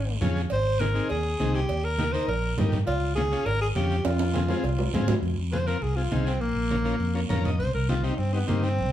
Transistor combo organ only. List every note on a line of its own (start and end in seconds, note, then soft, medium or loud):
0.21 0.42 C#4 medium
0.21 0.42 F4 medium
0.21 0.42 G#4 medium
0.80 0.85 C4 medium
0.80 0.85 D#4 medium
0.80 0.86 G#4 medium
0.94 1.10 C4 medium
0.94 1.10 D#4 medium
0.94 1.11 G#4 medium
1.39 1.60 C4 medium
1.39 1.60 D#4 medium
1.39 1.61 G#4 medium
1.99 2.04 A#3 medium
1.99 2.04 D#4 medium
1.99 2.04 G4 medium
2.14 2.29 A#3 medium
2.14 2.29 D#4 medium
2.14 2.29 A#4 medium
2.58 2.78 A#3 medium
2.58 2.79 D#4 medium
2.58 2.79 G4 medium
3.17 3.22 C#4 medium
3.17 3.22 F4 medium
3.17 3.22 G#4 medium
3.32 3.47 C#4 medium
3.32 3.47 F4 medium
3.32 3.48 G#4 medium
3.76 3.96 C#4 medium
3.76 3.97 F4 medium
3.76 3.97 G4 medium
4.35 4.40 C4 medium
4.35 4.40 F4 medium
4.35 4.40 G#4 medium
4.49 4.65 C4 medium
4.49 4.65 F4 medium
4.49 4.65 G#4 medium
4.94 5.14 C4 medium
4.94 5.15 F4 medium
4.94 5.15 G#4 medium
5.52 5.58 C4 medium
5.52 5.58 F4 medium
5.52 5.58 G#4 medium
5.67 5.78 C4 medium
5.67 5.78 F4 medium
5.67 5.78 A#4 medium
5.97 6.02 C4 medium
5.97 6.02 F4 medium
5.97 6.03 G#4 medium
6.12 6.32 C4 medium
6.12 6.33 F4 medium
6.12 6.33 G#4 medium
6.71 6.76 C#4 medium
6.71 6.76 F4 medium
6.71 6.76 A#4 medium
6.84 6.95 C#4 medium
6.84 6.96 F4 medium
6.84 6.96 A#4 medium
7.15 7.20 C#4 medium
7.15 7.20 F4 medium
7.15 7.21 A#4 medium
7.29 7.50 C#4 medium
7.29 7.51 F4 medium
7.29 7.51 A#4 medium
7.29 7.44 A#5 medium
7.46 7.59 D#5 medium
7.89 7.94 C4 medium
7.89 7.95 D#4 medium
7.89 7.95 G4 medium
8.03 8.14 C4 medium
8.03 8.14 D#4 medium
8.03 8.14 G4 medium
8.33 8.38 C4 medium
8.33 8.39 D#4 medium
8.33 8.39 G4 medium
8.47 8.68 C4 medium
8.47 8.69 D#4 medium
8.47 8.69 G4 medium